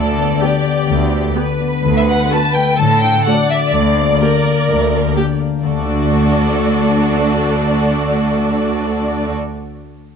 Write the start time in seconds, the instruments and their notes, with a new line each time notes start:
Already playing: cello section D2, harp D3 D4, violin section A4 D5
0.18 harp B3
0.41 viola section B3 G4, harp G4, violin section G4
0.65 harp B3
0.88 cello section D2, harp D3
1.13 harp D4
1.36 viola section B3 G4, harp G4, violin section B4
1.60 harp B3
1.84 cello section D2, harp D3
1.96 violin section E5
2.07 harp A3, violin section F#5
2.30 viola section A3 F#4, harp F#4, violin section A5
2.54 harp A3, violin section G5
2.77 cello section A2, harp D3, violin section A4 A5
3.02 harp D4, violin section G5
3.25 viola section A3 F#4, harp F#4, violin section D5 F#5
3.49 harp A3, violin section E5
3.67 violin section E5
3.73 cello section D2, harp D3, violin section D5
3.97 harp A#3
4.21 viola section A#3 G4, harp G4, violin section A#4
4.44 harp A#3
4.68 cello section D2, harp D3
4.92 harp D4
5.15 viola section A#3 G4, harp G4, violin section G4
5.40 harp A#3
5.63 cello section D2, harp D3, viola section A3 D4, violin section F#4 A4 D5
5.71 harp A3
5.78 harp D4
5.85 harp F#4
5.92 harp D5